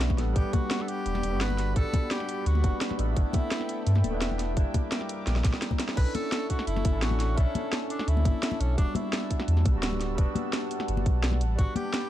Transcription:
Already playing: B1 G3 B3 D4 F#4 E5 F#5 B5
0.01 snare, closed hi-hat
0.10 kick, snare, high conga
0.17 A1 G3 B3 D4 A4 D5 B5, snare, closed hi-hat
0.33 A1 G3 B3 G4, kick, closed hi-hat
0.37 D4 F#5
0.53 F#4, kick, closed hi-hat, high conga
0.71 snare, closed hi-hat
0.80 A4, snare
0.88 G4, closed hi-hat
1.06 E1, closed hi-hat
1.15 snare, high conga
1.23 E1, closed hi-hat, high conga
1.29 G1 G3 B3 D4
1.35 F#4
1.41 B4, snare, closed hi-hat
1.50 high conga
1.58 snare, closed hi-hat
1.73 A1 G3 B3 D4 A4, kick, closed hi-hat
1.79 F#5
1.93 kick, closed hi-hat, high conga
2.11 G4, snare, closed hi-hat
2.20 snare
2.29 closed hi-hat
2.46 D2 F#4, closed hi-hat
2.55 high conga
2.62 E1 G3 B3 D4 F#4, kick, closed hi-hat, high conga
2.81 snare, closed hi-hat
2.90 snare, high conga
2.97 A1 G3 B3 D4 E4 A4, closed hi-hat
3.13 G1 A3 B3 D4 A4 E5 G5, kick, closed hi-hat
3.20 E4
3.33 kick, closed hi-hat, high conga
3.52 snare, closed hi-hat
3.61 snare
3.69 closed hi-hat
3.87 G2, closed hi-hat
3.95 snare, high conga
4.04 D1, closed hi-hat, high conga
4.10 E1 A3 B3
4.14 D4 E4
4.22 snare, closed hi-hat
4.31 high conga
4.39 snare, closed hi-hat
4.54 F#1 G3 A#3 D4 A#4 D6, kick, closed hi-hat
4.60 E4
4.74 kick, closed hi-hat, high conga
4.92 snare, closed hi-hat
5.01 snare
5.09 closed hi-hat
5.27 A#1, snare, closed hi-hat
5.36 snare, high conga
5.44 A#1, kick, snare, closed hi-hat, high conga
5.54 snare
5.62 snare, closed hi-hat
5.71 kick, high conga
5.80 snare, closed hi-hat
5.89 snare
5.94 B1 C#4 D4 E4 A4 B4 E5 A5 C#6, kick, closed hi-hat, crash
6.00 A4
6.15 A4, closed hi-hat, high conga
6.32 snare, closed hi-hat
6.50 F#4, kick, closed hi-hat
6.59 snare
6.67 F#1 E4, closed hi-hat
6.76 snare, high conga
6.85 F#1, kick, closed hi-hat, high conga
6.91 A1 C#4 D4
6.95 E4 A4
7.02 F#4, snare, closed hi-hat
7.11 high conga
7.20 snare, closed hi-hat
7.34 B1 C#4 D4 E4, kick, closed hi-hat
7.40 A4
7.55 closed hi-hat, high conga
7.73 snare, closed hi-hat
7.90 D4, closed hi-hat
7.99 snare
8.08 D2 E4, closed hi-hat
8.17 high conga
8.25 F#1, kick, closed hi-hat, high conga
8.43 snare, closed hi-hat
8.52 high conga
8.60 B1 C#4, closed hi-hat
8.75 E1 G3 B3 D4 F#5 E6, kick, closed hi-hat
8.81 F#4
8.95 E4, closed hi-hat, high conga
9.13 snare, closed hi-hat
9.30 kick, closed hi-hat
9.40 snare
9.48 E2, closed hi-hat
9.57 snare, high conga
9.65 B1, kick, closed hi-hat, high conga
9.72 D1 G3 B3 D4
9.78 F#4
9.83 snare, closed hi-hat
9.93 high conga
10.01 snare, closed hi-hat
10.15 E1 G3 B3 D4, kick, closed hi-hat
10.21 F#4
10.35 closed hi-hat, high conga
10.53 snare, closed hi-hat
10.71 closed hi-hat
10.80 snare
10.88 G1, closed hi-hat
10.97 high conga
11.06 B1, kick, closed hi-hat, high conga
11.24 snare, closed hi-hat
11.32 snare, high conga
11.41 A1 B5, closed hi-hat
11.55 A1 G3 B3 D4 F#4, kick, closed hi-hat
11.61 F#5
11.76 G4, closed hi-hat, high conga
11.94 snare, closed hi-hat

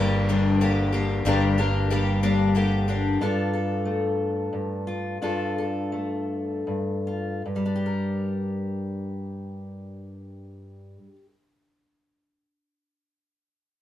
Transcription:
Already playing: G1 G2 G3 A#3 D4 G4 A#4
0.29 G2 D3 G3 A#3 D4 G4
0.61 D3 G3 A#3 D4 G4
0.93 G3 A#3 D4 G4
1.25 G1 G2 D3 G3 A#3 D4 G4 A#4
1.58 G3 A#3 D4 G4 A#4
1.90 G3 A#3 D4 G4
2.23 G2 D3 G3 A#3 D4 G4
2.55 D3 G3 A#3 D4 G4
2.88 G3 A#3 D4 G4
3.21 G2 D4 F4 A4
3.53 A4
3.85 A3
4.53 G2
4.87 F4
5.22 G2 D4 F4 A4
5.58 A4
5.92 A3
6.67 G2
7.07 F4
7.46 G2
7.56 G3
7.66 D4
7.76 G4
7.86 A#4

